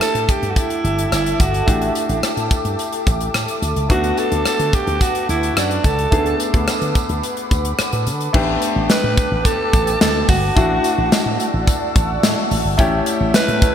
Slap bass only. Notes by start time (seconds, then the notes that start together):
0.01 muted slap bass stroke
0.15 A2
0.43 G2
0.84 G1
1.12 G1
1.40 G1
1.68 A1
2.09 A1
2.23 muted slap bass stroke
2.37 A2
2.65 G2
3.07 A1
3.34 A2
3.62 D2
3.76 C#2
3.90 D2
4.32 D2
4.46 muted slap bass stroke
4.59 D3
4.87 D2
5.29 D2
5.57 F#2
5.84 C#2
6.12 D2
6.54 D2
6.68 muted slap bass stroke
6.82 D3
7.09 D2
7.51 D2
7.79 muted slap bass stroke
7.93 A2
8.07 D3
8.34 A1
8.76 A1
9.04 A2
9.32 A1
9.73 A1
10.01 D2
10.29 G1
10.57 A1
10.98 A1
11.12 muted slap bass stroke
11.26 A2
11.54 A1
11.96 A1
12.23 A2
12.51 A1
12.65 G1
12.79 A1
13.21 A1
13.48 A2